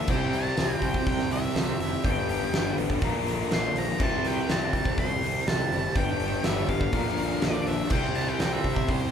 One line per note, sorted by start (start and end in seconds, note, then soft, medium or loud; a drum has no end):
0.00 0.10 E5 medium
0.07 0.24 C2 medium
0.07 0.45 C3 medium
0.07 0.81 C3 medium
0.07 0.45 G3 medium
0.07 0.45 C4 medium
0.07 0.44 E4 medium
0.07 2.04 G4 loud
0.07 0.43 C5 medium
0.07 0.35 G5 loud
0.07 kick loud
0.07 crash medium
0.33 0.48 C2 loud
0.33 1.05 G3 medium
0.33 0.85 A5 loud
0.33 open hi-hat medium
0.44 0.56 C4 soft
0.44 0.56 E4 soft
0.44 0.57 C5 medium
0.56 0.73 C2 medium
0.56 0.69 C3 medium
0.56 0.70 G3 medium
0.56 0.69 C4 medium
0.56 1.80 C4 medium
0.56 0.68 E4 medium
0.56 0.67 C5 medium
0.56 snare loud
0.56 open hi-hat medium
0.68 0.81 C5 soft
0.82 0.98 C2 loud
0.82 1.30 C3 medium
0.82 1.18 G3 medium
0.82 1.19 C4 medium
0.82 1.18 E4 medium
0.82 1.17 C5 medium
0.82 1.06 G5 medium
0.82 kick medium
0.82 open hi-hat medium
0.94 kick medium
1.06 1.22 C2 medium
1.06 1.54 G3 medium
1.06 1.32 G5 loud
1.06 kick medium
1.06 open hi-hat medium
1.18 1.29 C4 soft
1.18 1.30 E4 soft
1.18 1.30 C5 medium
1.18 snare soft
1.29 1.46 C2 medium
1.29 2.04 C3 medium
1.29 1.42 G3 medium
1.29 1.43 C4 medium
1.29 1.42 E4 medium
1.29 1.41 C5 medium
1.29 1.79 E5 loud
1.29 open hi-hat medium
1.43 1.54 C4 soft
1.43 1.55 E4 soft
1.55 1.70 C2 medium
1.55 1.67 C3 medium
1.55 1.68 G3 medium
1.55 2.04 G3 medium
1.55 1.68 C4 medium
1.55 1.67 E4 medium
1.55 1.66 C5 medium
1.55 snare loud
1.55 open hi-hat medium
1.67 1.91 C4 soft
1.67 1.91 E4 soft
1.67 1.89 C5 medium
1.79 1.95 F1 medium
1.79 2.04 E4 medium
1.79 2.04 E5 medium
1.79 open hi-hat medium
1.90 2.03 C4 soft
1.90 2.03 E4 soft
1.90 2.03 C5 medium
2.02 2.20 G1 medium
2.02 2.40 G2 medium
2.02 3.02 G2 medium
2.02 2.40 D3 medium
2.02 2.40 G3 medium
2.02 2.40 B3 medium
2.02 2.39 D4 medium
2.02 2.39 B4 medium
2.02 2.74 G5 loud
2.02 kick loud
2.02 open hi-hat medium
2.07 3.02 G4 loud
2.29 2.44 G1 medium
2.29 3.02 G3 medium
2.29 open hi-hat medium
2.40 2.51 G3 soft
2.40 2.51 B3 soft
2.40 2.52 D4 soft
2.40 2.52 B4 medium
2.52 2.68 G1 medium
2.52 2.65 G2 medium
2.52 2.65 D3 medium
2.52 2.65 G3 medium
2.52 2.65 B3 medium
2.52 3.02 B3 medium
2.52 2.64 D4 medium
2.52 2.63 B4 medium
2.52 snare loud
2.52 open hi-hat medium
2.65 2.76 G3 soft
2.65 2.76 B3 soft
2.65 2.77 D4 medium
2.65 2.77 B4 medium
2.77 2.93 A1 medium
2.77 3.02 D3 medium
2.77 3.01 G3 medium
2.77 3.02 B3 medium
2.77 3.01 D4 medium
2.77 3.02 B4 medium
2.77 open hi-hat medium
2.90 kick medium
3.01 3.18 A#1 medium
3.01 3.14 A#2 medium
3.01 4.00 A#2 medium
3.01 3.14 D3 medium
3.01 3.14 F3 medium
3.01 3.13 A#3 medium
3.01 3.13 D4 loud
3.01 3.12 A#4 medium
3.01 kick medium
3.01 open hi-hat medium
3.13 3.24 F3 medium
3.13 3.24 A#3 medium
3.13 3.25 D4 medium
3.13 3.26 A#4 medium
3.25 3.42 A#1 medium
3.25 3.99 D3 medium
3.25 3.49 F3 medium
3.25 3.50 A#3 medium
3.25 3.49 D4 medium
3.25 3.50 A#4 medium
3.25 open hi-hat medium
3.50 3.67 A#1 medium
3.50 3.62 A#2 medium
3.50 3.63 D3 medium
3.50 3.63 F3 medium
3.50 4.00 F3 medium
3.50 3.62 A#3 medium
3.50 3.61 D4 medium
3.50 3.61 A#4 medium
3.50 snare loud
3.50 open hi-hat medium
3.54 3.78 C6 loud
3.62 3.87 F3 soft
3.62 3.86 A#3 soft
3.62 3.86 D4 soft
3.62 3.85 A#4 medium
3.75 3.91 A#1 medium
3.75 4.00 D4 medium
3.75 4.02 A#5 medium
3.75 open hi-hat medium
3.86 3.99 F3 soft
3.86 3.99 A#3 soft
3.86 3.99 D4 soft
3.86 3.99 A#4 medium
3.98 4.15 C2 loud
3.98 4.36 C3 medium
3.98 4.72 C3 medium
3.98 4.36 G3 medium
3.98 4.36 C4 medium
3.98 4.36 E4 medium
3.98 5.95 G4 loud
3.98 4.35 C5 medium
3.98 kick loud
3.98 crash medium
4.03 4.27 A5 loud
4.24 4.39 C2 medium
4.24 4.96 G3 medium
4.24 4.51 G5 medium
4.24 snare soft
4.24 open hi-hat medium
4.36 4.49 C4 soft
4.36 4.49 E4 soft
4.36 4.49 C5 medium
4.49 4.64 C2 medium
4.49 4.61 C3 medium
4.49 4.62 G3 medium
4.49 5.71 C4 medium
4.49 4.61 C4 medium
4.49 4.60 E4 medium
4.49 4.59 C5 medium
4.49 4.99 A5 medium
4.49 snare loud
4.49 open hi-hat medium
4.60 4.71 C4 soft
4.60 4.73 C5 soft
4.72 4.88 C2 medium
4.72 5.21 C3 medium
4.72 5.09 G3 medium
4.72 5.09 C4 medium
4.72 5.09 E4 medium
4.72 5.07 C5 medium
4.72 kick medium
4.72 open hi-hat medium
4.85 kick medium
4.97 5.13 C2 medium
4.97 5.45 G3 medium
4.97 5.48 C6 loud
4.97 kick medium
4.97 open hi-hat medium
5.09 5.21 C4 medium
5.09 5.21 E4 medium
5.09 5.21 C5 medium
5.21 5.37 C2 medium
5.21 5.96 C3 medium
5.21 5.45 G3 medium
5.21 5.46 C4 medium
5.21 5.46 E4 medium
5.21 5.46 C5 medium
5.21 open hi-hat medium
5.46 5.62 C2 medium
5.46 5.58 C3 medium
5.46 5.95 G3 medium
5.46 5.59 G3 medium
5.46 5.59 C4 medium
5.46 5.59 E4 medium
5.46 5.98 A5 loud
5.46 snare loud
5.46 open hi-hat medium
5.59 5.83 C4 soft
5.59 5.83 E4 soft
5.59 5.81 C5 medium
5.71 5.86 F#1 medium
5.71 5.96 E4 medium
5.71 open hi-hat medium
5.82 5.96 C4 soft
5.82 5.96 E4 soft
5.82 5.95 C5 medium
5.95 6.11 G1 medium
5.95 6.32 G2 medium
5.95 6.93 G2 medium
5.95 6.32 D3 medium
5.95 6.32 G3 medium
5.95 6.33 B3 medium
5.95 6.32 D4 medium
5.95 6.93 G4 medium
5.95 6.31 B4 loud
5.95 6.45 G5 loud
5.95 kick loud
5.95 open hi-hat medium
6.20 6.35 G1 medium
6.20 6.93 G3 medium
6.20 open hi-hat medium
6.32 6.45 G3 soft
6.32 6.45 B3 soft
6.32 6.45 D4 medium
6.32 6.44 B4 medium
6.44 6.60 G1 medium
6.44 6.69 G2 medium
6.44 6.69 D3 medium
6.44 6.67 G3 medium
6.44 6.93 B3 medium
6.44 6.68 B3 medium
6.44 6.68 D4 medium
6.44 6.69 B4 medium
6.44 6.69 E5 medium
6.44 snare loud
6.44 open hi-hat medium
6.68 6.84 G1 medium
6.68 6.94 D3 medium
6.68 6.93 G3 medium
6.68 6.93 B3 medium
6.68 6.93 D4 medium
6.68 6.94 B4 medium
6.68 7.45 F5 loud
6.68 kick medium
6.68 open hi-hat medium
6.81 kick medium
6.93 7.08 A#1 medium
6.93 7.91 A#2 medium
6.93 7.05 A#2 medium
6.93 7.06 D3 medium
6.93 7.06 F3 medium
6.93 7.05 A#3 medium
6.93 7.05 D4 medium
6.93 7.04 A#4 medium
6.93 kick medium
6.93 open hi-hat medium
7.05 7.16 F3 soft
7.05 7.17 A#3 soft
7.05 7.18 D4 medium
7.05 7.17 A#4 medium
7.05 snare soft
7.17 7.34 A#1 medium
7.17 7.90 D3 medium
7.17 7.41 F3 medium
7.17 7.41 A#3 medium
7.17 7.41 D4 medium
7.17 7.41 A#4 medium
7.17 open hi-hat medium
7.41 7.58 A#1 medium
7.41 7.54 A#2 medium
7.41 7.54 D3 medium
7.41 7.91 F3 medium
7.41 7.54 F3 medium
7.41 7.54 A#3 medium
7.41 7.53 D4 medium
7.41 7.53 A#4 medium
7.41 7.68 D5 medium
7.41 snare loud
7.41 open hi-hat medium
7.54 7.78 F3 soft
7.54 7.78 A#3 soft
7.54 7.77 D4 soft
7.54 7.77 A#4 medium
7.66 7.82 A#1 medium
7.66 7.91 D4 medium
7.66 7.91 E5 medium
7.66 open hi-hat medium
7.78 7.89 F3 soft
7.78 7.89 A#3 soft
7.78 7.89 D4 medium
7.78 7.90 A#4 medium
7.89 8.06 C2 loud
7.89 8.27 C3 medium
7.89 8.64 C3 medium
7.89 8.27 G3 medium
7.89 8.27 C4 medium
7.89 8.27 E4 medium
7.89 8.25 C5 medium
7.89 8.17 G5 loud
7.89 kick loud
7.89 crash loud
7.93 9.11 G4 loud
8.15 8.31 C2 medium
8.15 8.88 G3 medium
8.15 8.28 A5 medium
8.15 open hi-hat medium
8.27 8.38 C4 soft
8.27 8.38 E4 soft
8.27 8.38 C5 medium
8.27 8.39 G5 medium
8.38 8.55 C2 medium
8.38 8.64 C3 medium
8.38 8.62 G3 medium
8.38 8.63 C4 medium
8.38 9.11 C4 medium
8.38 8.64 E4 medium
8.38 8.64 C5 medium
8.38 8.53 G5 medium
8.38 snare loud
8.38 open hi-hat medium
8.53 8.90 E5 medium
8.64 8.80 C2 loud
8.64 9.11 C3 medium
8.64 9.01 G3 medium
8.64 9.00 C4 medium
8.64 9.00 E4 medium
8.64 8.99 C5 medium
8.64 kick medium
8.64 open hi-hat medium
8.76 kick medium
8.88 9.04 C2 loud
8.88 9.11 G3 medium
8.88 9.11 C5 medium
8.88 kick medium
8.88 open hi-hat medium
9.00 9.11 C4 medium
9.00 9.11 E4 medium
9.00 9.11 C5 medium